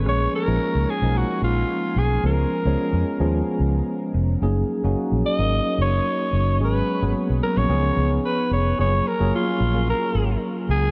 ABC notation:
X:1
M:4/4
L:1/16
Q:"Swing 16ths" 1/4=110
K:F#
V:1 name="Alto saxophone"
c2 A4 G2 F2 E4 G2 | A8 z8 | z6 d4 c6 | B4 z2 A c4 z B2 c2 |
c2 A2 E4 A4 z2 G z |]
V:2 name="Tine electric piano"
[E,G,A,CG]2 z [E,G,A,CD]3 z [E,G,A,CD]6 z3 | [E,G,B,CG]2 z [E,G,B,Cc]3 z [E,G,B,CG]6 z3 | [F,A,CDG]2 z [F,A,CDF]3 z [F,A,CDA]6 z3 | [F,G,B,CG]2 z [F,A,B,CG]3 z [F,A,B,CG] [E,B,CDG]6 z2 |
[F,A,CEG]2 z [F,A,CEG]3 z [F,A,CEA]6 z3 |]
V:3 name="Fingered electric bass" clef=bass
A,,,2 z A,,, z C,, z B,,,2 z A,,,2 z2 B,,,2 | C,,2 z C,, z E,, z D,,2 z C,,2 z2 E,,,2 | F,,,2 z F,,, z A,,, z G,,,2 z F,,,2 z2 F,,,2 | G,,,2 z G,,, z B,,, z A,,, C,,2 C,,2 z2 E,,,2 |
F,,,2 z F,,, z2 A,,,3 z G,,,2 z2 C,,2 |]